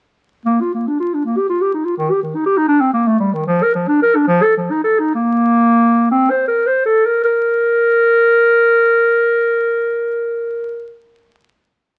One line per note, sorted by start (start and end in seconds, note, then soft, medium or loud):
0.45 0.63 A#3 medium
0.61 0.74 F4 medium
0.74 0.89 A#3 soft
0.88 0.99 D4 soft
1.00 1.16 F4 soft
1.14 1.24 D4 soft
1.24 1.39 A#3 medium
1.37 1.48 G4 medium
1.49 1.63 F4 medium
1.62 1.73 G4 medium
1.74 1.86 D#4 medium
1.85 1.97 F4 medium
1.97 2.12 D#3 medium
2.11 2.22 G4 medium
2.23 2.36 D#3 medium
2.35 2.45 D#4 medium
2.46 2.59 G4 medium
2.58 2.67 D#4 medium
2.68 2.82 D4 medium
2.80 2.93 C4 medium
2.93 3.09 A#3 medium
3.07 3.19 A3 medium
3.20 3.35 G3 medium
3.33 3.46 D#3 medium
3.47 3.64 F3 medium
3.63 3.74 A#4 medium
3.75 3.89 F3 medium
3.88 4.01 D4 medium
4.02 4.17 A#4 medium
4.16 4.27 D4 medium
4.27 4.44 F3 medium
4.43 4.56 A4 medium
4.57 4.72 F3 medium
4.71 4.83 D#4 medium
4.84 5.01 A4 medium
4.99 5.14 D#4 medium
5.14 6.10 A#3 medium
6.11 6.32 C4 medium
6.30 6.47 C5 medium
6.48 6.68 A#4 medium
6.67 6.85 C5 medium
6.86 7.07 A4 medium
7.06 7.24 A#4 medium
7.24 10.95 A#4 medium